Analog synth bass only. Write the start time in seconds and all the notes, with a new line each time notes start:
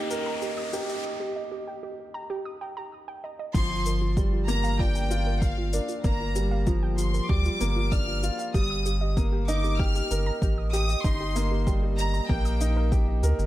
3.55 G1
6.04 G1
7.29 D2
7.61 G1
8.54 G1
10.11 G1
10.42 A1
11.05 G1
12.29 A#1
13.23 D2
13.39 G1